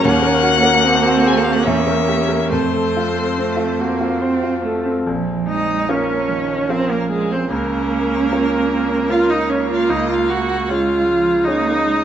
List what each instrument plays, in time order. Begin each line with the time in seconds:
Already playing: viola C#4
0.01 grand piano D#2, cello A#3, violin F#5
0.22 grand piano A#4
0.43 grand piano F#4
0.63 grand piano A#4
0.83 viola C4, grand piano C4
1.06 grand piano F#4
1.26 grand piano G#4, violin G#5
1.37 violin F#5
1.44 grand piano F#4, violin F5
1.53 violin F#5
1.63 grand piano E2, viola C#4, violin E5
1.87 grand piano A#4
2.08 grand piano G4
2.29 grand piano A#4
2.49 grand piano F2, cello A3, viola C4, violin C5
2.74 grand piano A4
2.97 grand piano F4
3.17 grand piano A4
3.38 cello A3, grand piano C4
3.57 grand piano F4
3.79 cello A#3, grand piano F#4
4.01 grand piano F4
4.22 cello C4, grand piano C5
4.43 grand piano F4
4.64 cello A3, grand piano A4
4.85 grand piano C4
5.06 grand piano A#1, cello F3
5.47 cello G#3, viola D#4, violin D#5
5.89 cello A#3, grand piano C#4 F4 A#4, viola C#4, violin C#5
6.29 cello D#3
6.69 cello F3, viola C4, grand piano C#4 F4 A#4, violin C5
6.88 viola A#3, violin A#4
7.09 viola G#3, violin G#4
7.31 viola C4, violin C5
7.51 grand piano C#2, viola A#3, cello C#4, violin A#4
8.32 grand piano C#4 F4 A#4
9.09 cello A#3, grand piano C#4 F4 A#4, viola F4, violin F5
9.30 viola D#4, violin D#5
9.49 viola C#4, violin C#5
9.71 viola F4, violin F5
9.89 grand piano C#2, viola D#4, violin D#5
10.09 viola F4
10.13 violin F5
10.29 viola F#4
10.33 violin F#5
10.69 cello G#3, grand piano C#4 G#4 C#5, viola F4
10.73 violin F5
11.09 cello F3
11.44 cello A#3, grand piano C#4 G#4 C#5, viola D#4, violin D#5
11.85 cello G#3